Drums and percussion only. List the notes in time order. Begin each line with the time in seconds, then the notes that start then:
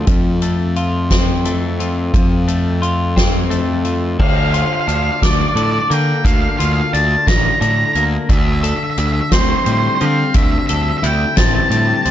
0.07 kick, closed hi-hat
0.42 closed hi-hat
0.76 closed hi-hat
1.11 kick, snare, closed hi-hat
1.45 closed hi-hat
1.80 closed hi-hat
2.14 kick, closed hi-hat
2.48 closed hi-hat
2.83 closed hi-hat
3.17 kick, snare, closed hi-hat
3.51 closed hi-hat
3.85 closed hi-hat
4.19 kick, crash
4.54 closed hi-hat
4.88 closed hi-hat
5.22 kick, snare, closed hi-hat
5.57 closed hi-hat
5.91 closed hi-hat
6.25 kick, closed hi-hat
6.60 closed hi-hat
6.94 closed hi-hat
7.27 kick, snare, closed hi-hat
7.62 closed hi-hat
7.95 closed hi-hat
8.29 kick, closed hi-hat
8.64 closed hi-hat
8.98 closed hi-hat
9.32 kick, snare, closed hi-hat
9.66 closed hi-hat
10.01 closed hi-hat
10.34 kick, closed hi-hat
10.69 closed hi-hat
11.04 closed hi-hat
11.37 kick, snare, closed hi-hat
11.71 closed hi-hat
12.05 closed hi-hat